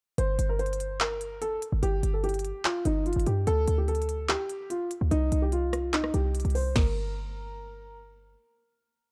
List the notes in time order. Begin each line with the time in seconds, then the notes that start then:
0.18 G1 C5, closed hi-hat
0.39 G1, closed hi-hat
0.49 A#4
0.59 C5, closed hi-hat
0.66 closed hi-hat
0.73 closed hi-hat
0.80 closed hi-hat
1.00 A#4, clap, closed hi-hat
1.21 closed hi-hat
1.42 A4, closed hi-hat
1.62 closed hi-hat
1.72 G1
1.83 G1 G4, closed hi-hat
2.03 G1, closed hi-hat
2.13 A4
2.24 G4, closed hi-hat
2.29 closed hi-hat
2.34 closed hi-hat
2.39 closed hi-hat
2.45 closed hi-hat
2.64 F4, clap, closed hi-hat
2.85 G1 D#4, closed hi-hat
3.06 F4, closed hi-hat
3.13 G1, closed hi-hat
3.20 closed hi-hat
3.26 G2 G4, closed hi-hat
3.47 D2 A4, closed hi-hat
3.67 D2, closed hi-hat
3.78 G4
3.88 A4, closed hi-hat
3.95 closed hi-hat
4.02 closed hi-hat
4.09 closed hi-hat
4.29 G4, clap, closed hi-hat
4.49 closed hi-hat
4.70 F4, closed hi-hat
4.91 closed hi-hat
5.01 D2
5.11 C2 D#4, closed hi-hat
5.32 C2, closed hi-hat
5.42 G4
5.52 F4, closed hi-hat
5.73 cross-stick, closed hi-hat
5.93 D#4, clap, closed hi-hat
6.04 cross-stick
6.14 C2 G4, closed hi-hat
6.35 closed hi-hat
6.40 closed hi-hat
6.45 C2, closed hi-hat
6.50 closed hi-hat
6.55 C5, open hi-hat
6.76 G1 A#4, kick, snare, crash